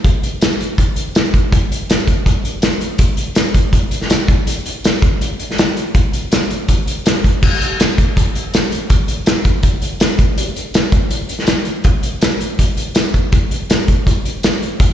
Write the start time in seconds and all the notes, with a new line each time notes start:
0.04 kick, closed hi-hat
0.23 closed hi-hat
0.41 snare, closed hi-hat, tambourine
0.61 closed hi-hat
0.78 kick, closed hi-hat
0.96 closed hi-hat
1.15 snare, closed hi-hat, tambourine
1.34 kick, closed hi-hat
1.52 kick, closed hi-hat
1.72 closed hi-hat
1.90 snare, closed hi-hat, tambourine
2.08 kick, closed hi-hat
2.26 kick, closed hi-hat
2.45 closed hi-hat
2.62 snare, closed hi-hat, tambourine
2.81 closed hi-hat
2.98 kick, closed hi-hat
3.17 closed hi-hat
3.35 snare, closed hi-hat, tambourine
3.54 kick, closed hi-hat
3.73 kick, closed hi-hat
3.91 closed hi-hat
4.01 snare
4.10 snare, closed hi-hat, tambourine
4.28 kick, closed hi-hat
4.47 closed hi-hat
4.66 closed hi-hat
4.84 snare, closed hi-hat, tambourine
5.02 kick, closed hi-hat
5.21 closed hi-hat
5.39 closed hi-hat
5.51 snare
5.58 snare, closed hi-hat, tambourine
5.77 closed hi-hat
5.95 kick, closed hi-hat
6.13 closed hi-hat
6.32 snare, closed hi-hat, tambourine
6.50 closed hi-hat
6.68 kick, closed hi-hat
6.88 closed hi-hat
7.06 snare, closed hi-hat, tambourine
7.24 kick, closed hi-hat
7.43 kick, crash
7.62 closed hi-hat
7.80 snare, closed hi-hat, tambourine
7.98 kick, closed hi-hat
8.17 kick, closed hi-hat
8.35 closed hi-hat
8.54 snare, closed hi-hat, tambourine
8.72 closed hi-hat
8.90 kick, closed hi-hat
9.08 closed hi-hat
9.26 snare, closed hi-hat, tambourine
9.45 kick, closed hi-hat
9.63 kick, closed hi-hat
9.82 closed hi-hat
10.00 snare, closed hi-hat, tambourine
10.19 kick, closed hi-hat
10.38 closed hi-hat
10.56 closed hi-hat
10.74 snare, closed hi-hat, tambourine
10.92 kick, closed hi-hat
11.11 closed hi-hat
11.29 closed hi-hat
11.39 snare
11.47 snare, closed hi-hat, tambourine
11.65 closed hi-hat
11.84 kick, closed hi-hat
12.03 closed hi-hat
12.21 snare, closed hi-hat, tambourine
12.41 closed hi-hat
12.59 kick, closed hi-hat
12.77 closed hi-hat
12.95 snare, closed hi-hat, tambourine
13.14 kick, closed hi-hat
13.32 kick, closed hi-hat
13.51 closed hi-hat
13.70 snare, closed hi-hat, tambourine
13.88 kick, closed hi-hat
14.07 kick, closed hi-hat
14.25 closed hi-hat
14.43 snare, closed hi-hat, tambourine
14.62 closed hi-hat
14.80 kick, closed hi-hat